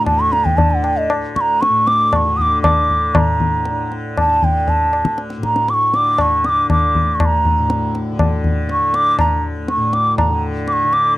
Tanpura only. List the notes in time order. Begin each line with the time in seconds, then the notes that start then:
Already playing: D2 A2 D3
0.55 D3
1.12 D2
1.69 A2
2.25 D3
2.81 D3
3.15 A2
3.70 D3
4.26 D3
4.81 D2
5.38 A2
5.92 D3
6.48 D3
7.02 D2
7.57 A2
8.12 D3
8.67 D3
9.21 D2
9.77 A2
10.30 D3
10.84 D3